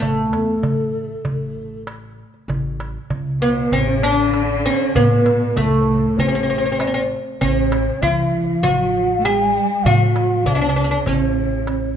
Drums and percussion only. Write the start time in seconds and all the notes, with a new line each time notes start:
0.02 darbuka dum
0.33 darbuka tek
0.63 darbuka dum
0.95 darbuka ka
1.25 darbuka dum
1.87 darbuka tek
2.03 darbuka ka
2.34 darbuka ka
2.49 darbuka dum
2.80 darbuka tek
3.10 darbuka dum
3.42 darbuka ka
3.72 darbuka dum
4.34 darbuka tek
4.50 darbuka ka
4.95 darbuka dum
5.26 darbuka tek
5.56 darbuka dum
5.88 darbuka ka
6.19 darbuka dum
6.80 darbuka tek
6.96 darbuka ka
7.42 darbuka dum
7.72 darbuka tek
8.03 darbuka dum
8.34 darbuka ka
8.64 darbuka dum
9.25 darbuka tek
9.40 darbuka ka
9.86 darbuka dum
10.16 darbuka tek
10.46 darbuka dum
10.76 darbuka ka
11.06 darbuka dum
11.67 darbuka tek
11.82 darbuka ka